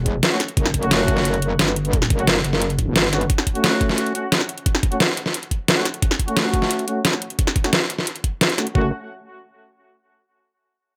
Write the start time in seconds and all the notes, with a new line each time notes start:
Already playing: E1
0.06 kick, closed hi-hat
0.23 snare, closed hi-hat
0.31 A3 C#4 F#4
0.40 snare, closed hi-hat
0.48 closed hi-hat
0.57 F#1, kick, closed hi-hat
0.66 snare
0.74 F#1, kick, closed hi-hat
0.83 A3 C#4 F#4, closed hi-hat
0.91 snare, closed hi-hat
1.08 kick, closed hi-hat
1.17 snare
1.25 closed hi-hat
1.34 closed hi-hat
1.42 closed hi-hat
1.59 G1, snare, closed hi-hat
1.68 snare
1.76 closed hi-hat
1.85 closed hi-hat
1.93 kick, closed hi-hat
2.02 snare
2.10 F#1, kick, closed hi-hat
2.19 A3 C#4 F#4, closed hi-hat
2.27 snare, closed hi-hat
2.44 F#1, closed hi-hat
2.53 snare
2.62 closed hi-hat
2.70 closed hi-hat
2.79 kick, closed hi-hat
2.96 G1, snare, closed hi-hat
3.13 A3 C#4 F#4, snare, closed hi-hat
3.21 closed hi-hat
3.30 kick, closed hi-hat
3.38 snare
3.47 kick, closed hi-hat
3.55 A3 C#4 F#4, closed hi-hat
3.64 snare, closed hi-hat
3.81 kick, closed hi-hat
3.89 snare
3.98 closed hi-hat
4.06 closed hi-hat
4.15 A3 C#4 F#4, closed hi-hat
4.32 snare, closed hi-hat
4.41 snare
4.49 closed hi-hat
4.58 closed hi-hat
4.66 kick, closed hi-hat
4.75 snare
4.83 kick, closed hi-hat
4.92 A3 C#4 F#4, closed hi-hat
5.00 snare, closed hi-hat
5.17 closed hi-hat
5.26 snare
5.34 closed hi-hat
5.43 closed hi-hat
5.51 kick, closed hi-hat
5.68 snare, closed hi-hat
5.77 A3 C#4 F#4
5.85 snare, closed hi-hat
5.94 closed hi-hat
6.02 kick, closed hi-hat
6.11 snare
6.19 kick, closed hi-hat
6.28 A3 C#4 F#4, closed hi-hat
6.37 snare, closed hi-hat
6.54 kick, closed hi-hat
6.62 snare
6.71 closed hi-hat
6.79 closed hi-hat
6.88 A3 C#4 F#4, closed hi-hat
7.05 snare, closed hi-hat
7.13 snare
7.22 closed hi-hat
7.30 closed hi-hat
7.39 kick, closed hi-hat
7.47 snare
7.56 kick, closed hi-hat
7.64 A3 C#4 F#4, snare, closed hi-hat
7.73 snare, closed hi-hat
7.90 closed hi-hat
7.98 snare
8.07 closed hi-hat
8.16 closed hi-hat
8.24 kick, closed hi-hat
8.41 snare, closed hi-hat
8.50 closed hi-hat
8.58 A3 C#4 F#4, snare, closed hi-hat
8.67 closed hi-hat
8.75 F#1 A3 C#4 F#4, kick